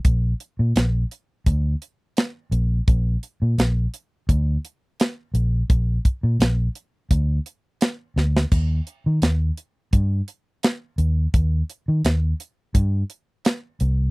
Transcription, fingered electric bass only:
X:1
M:4/4
L:1/16
Q:"Swing 16ths" 1/4=85
K:Bb
V:1 name="Fingered electric bass" clef=bass
B,,,2 z B,, B,,,2 z2 D,,2 z4 B,,,2 | B,,,2 z B,, B,,,2 z2 D,,2 z4 B,,,2 | B,,,2 z B,, B,,,2 z2 D,,2 z4 D,,2 | E,,2 z E, E,,2 z2 G,,2 z4 E,,2 |
E,,2 z E, E,,2 z2 G,,2 z4 C,,2 |]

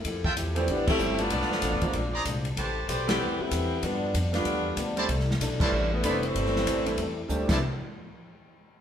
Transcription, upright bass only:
X:1
M:4/4
L:1/8
Q:"Swing" 1/4=191
K:C
V:1 name="Upright bass" clef=bass
F,,2 E,,2 A,,,2 G,,,2 | B,,, z (3A,,, F,,, D,,, _B,,,2 C,,2 | A,,,2 B,,,2 D,, z E,,2 | G,,2 F,,2 E,,2 D,,2 |
C,,2 B,,,2 A,,,2 F,,,2 | G,,,2 A,,,2 E,,2 D,, C,, | z8 |]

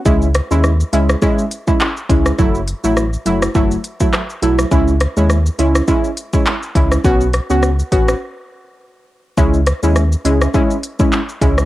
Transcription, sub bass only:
X:1
M:4/4
L:1/16
Q:"Swing 16ths" 1/4=103
K:C#m
V:1 name="Sub bass" clef=bass
C,,3 D,,3 C,,2 z6 C,,2 | F,,,3 A,,,3 F,,,2 F,,,2 z4 B,,,2 | C,,3 D,,3 C,,2 z6 C,,2 | B,,,3 C,,3 A,,,2 z8 |
C,,3 D,,3 C,,2 z6 C,,2 |]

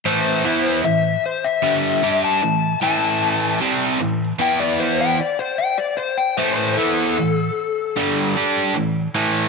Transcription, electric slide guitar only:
X:1
M:4/4
L:1/16
Q:1/4=76
K:Edor
V:1 name="Electric slide guitar"
=c4 e2 c e4 a3 a2- | a2 z4 g d =c g d c g d c g | =c c A8 z6 |]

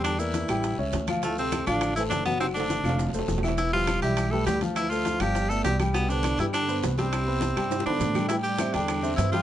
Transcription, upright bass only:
X:1
M:4/4
L:1/8
Q:1/4=204
K:C
V:1 name="Upright bass" clef=bass
E,,3 A,,,2 ^C,, D,,2- | D,,3 A,,,3 ^F,,,2- | ^F,,,3 =F,,,2 F,,, E,,,2- | E,,,3 B,,,3 D,,2- |
D,,3 G,,,3 C,,2- | C,,3 G,,3 C,,2- | C,,3 G,,2 G,, A,,2- | [K:Am] A,,3 E,,3 G,,2 |]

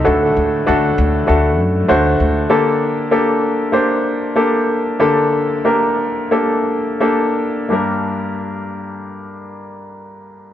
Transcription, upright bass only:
X:1
M:4/4
L:1/8
Q:1/4=93
K:Gm
V:1 name="Upright bass" clef=bass
D,, D,, D,, D,, D,, ^F,, D,, D,, | z8 | z8 | z8 |]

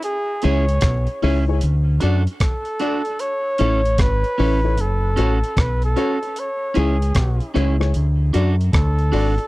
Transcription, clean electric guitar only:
X:1
M:4/4
L:1/8
Q:"Swing 16ths" 1/4=76
K:C#phr
V:1 name="Clean electric guitar"
z [CEG] z [CEG] z [DFA] z [DFA] | z [CEA] z [CEA] z [CFA] z [CFA] | z [CEG] z [CEG] z [DFA] z [DFA] |]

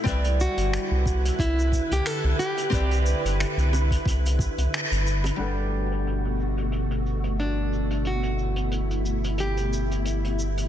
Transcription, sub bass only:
X:1
M:4/4
L:1/16
Q:"Swing 16ths" 1/4=90
K:G
V:1 name="Sub bass" clef=bass
C,,2 z G,,, z C,,2 z C,,2 z C,, z C,, z2 | C,,2 z G,,, z C,,2 z C,,2 z C,, z G,,,2 z | G,,,16- | G,,,16 |]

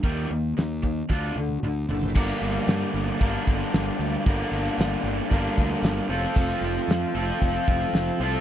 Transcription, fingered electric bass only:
X:1
M:4/4
L:1/8
Q:1/4=114
K:Gm
V:1 name="Fingered electric bass" clef=bass
E,, E,, E,,2 D,, D,, D,, ^F,,, | G,,, G,,, G,, G,,, G,,, G,,, G,,, D,, | G,,, G,,, G,,, G,,, G,,, D,, G,,, F,,, | F,,, F,,, F,, F,,, F,,, F,,, F,,, C,, |]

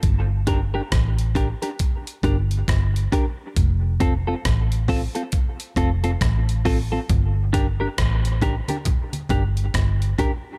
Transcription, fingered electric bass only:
X:1
M:4/4
L:1/16
Q:"Swing 16ths" 1/4=68
K:Gm
V:1 name="Fingered electric bass" clef=bass
G,,,4 A,,,3 z3 G,,,2 G,,,2 z2 | F,,,4 A,,,3 z3 F,,,2 A,,,4 | G,,,4 A,,,3 z3 G,,,2 G,,,2 z2 |]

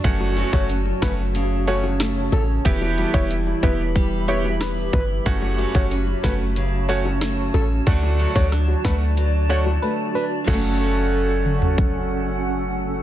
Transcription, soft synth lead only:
X:1
M:4/4
L:1/16
Q:1/4=92
K:F#phr
V:1 name="Soft synth lead"
z3 c z2 B z3 c z3 A z | z3 c z2 B z3 c z B z B z | z3 c z2 B z3 c z3 A z | z3 c z2 B z3 c z B z B z |
A12 z4 |]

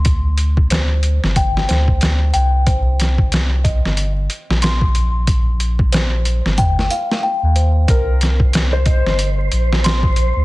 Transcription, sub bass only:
X:1
M:4/4
L:1/16
Q:"Swing 16ths" 1/4=92
K:Cm
V:1 name="Sub bass" clef=bass
D,,6- D,, G,,,3 D,,4 C,,2- | C,,6- C,, G,,,3 z B,,,4- B,,,- | B,,,6- B,,, G,,,3 z3 E,,3 | C,,6- C,, G,,,3 B,,,4- B,,, D,, |]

